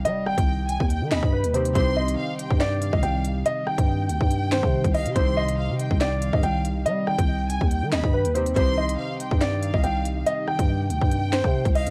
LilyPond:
<<
  \new Staff \with { instrumentName = "Violin section" } { \time 4/4 \key c \minor \tempo 4 = 141 r8 g''4 aes''8 g''8 b''8 r4 | c'''4 f''8 g''4 f''4. | r8 g''4 g''2 f''8 | c'''4 f''8 g''4 f''4. |
r8 g''4 aes''8 g''8 b''8 r4 | c'''4 f''8 g''4 f''4. | r8 g''4 g''2 f''8 | }
  \new Staff \with { instrumentName = "Grand piano" } { \time 4/4 \key c \minor ees''8 g''4. r8 ees''8 b'8 c''8 | c''8 ees''4. d''8. ees''16 g''8 r8 | ees''8 g''4. r8 c''4 ees''8 | c''8 ees''4. d''8. ees''16 g''8 r8 |
ees''8 g''4. r8 ees''8 b'8 c''8 | c''8 ees''4. d''8. ees''16 g''8 r8 | ees''8 g''4. r8 c''4 ees''8 | }
  \new Staff \with { instrumentName = "Synth keys" } { \time 4/4 \key c \minor <c c' ees' g'>2.~ <c c' ees' g'>8 <c c' ees' g'>8 | <c c' ees' g'>1~ | <c c' ees' g'>1 | <c c' ees' g'>1~ |
<c c' ees' g'>2.~ <c c' ees' g'>8 <c c' ees' g'>8 | <c c' ees' g'>1~ | <c c' ees' g'>1 | }
  \new Staff \with { instrumentName = "Ambient pad" } { \clef bass \time 4/4 \key c \minor <c ees g ees'>1~ | <c ees g ees'>1~ | <c ees g ees'>1~ | <c ees g ees'>1~ |
<c ees g ees'>1 | <c ees g ees'>1~ | <c ees g ees'>1 | }
  \new Staff \with { instrumentName = "808-style bass" } { \clef bass \time 4/4 \key c \minor g8. c,4 ees,8 ees16 ees,16 g,8 ees,8. | c,4 r8. g,4 c,16 c,4 | r8. g,8. d,16 g,4 c8 c,8 c16 | c,4~ c,16 c8 c,4 g,16 c,4 |
g8. c,4 ees,8 ees16 ees,16 g,8 ees,8. | c,4 r8. g,4 c,16 c,4 | r8. g,8. d,16 g,4 c8 c,8 c16 | }
  \new DrumStaff \with { instrumentName = "Drums" } \drummode { \time 4/4 hh8 ss16 <hh bd>16 r8 hh16 bd16 hh8 <hc hh sn>16 bd16 r16 hh16 hh16 hh16 | <hh bd>8. hh16 r8 hh16 bd16 <hc hh sn>8 hh16 bd16 hh8 hh8 | hh8 ss16 <hh bd>16 r8 hh16 bd16 hh8 <hc hh sn>16 bd16 r16 <hh bd>16 <hh hho>16 hh16 | <hh bd>8. hh16 r8 hh16 bd16 <hc hh sn>8 hh16 bd16 hh8 hh8 |
hh8 ss16 <hh bd>16 r8 hh16 bd16 hh8 <hc hh sn>16 bd16 r16 hh16 hh16 hh16 | <hh bd>8. hh16 r8 hh16 bd16 <hc hh sn>8 hh16 bd16 hh8 hh8 | hh8 ss16 <hh bd>16 r8 hh16 bd16 hh8 <hc hh sn>16 bd16 r16 <hh bd>16 <hh hho>16 hh16 | }
>>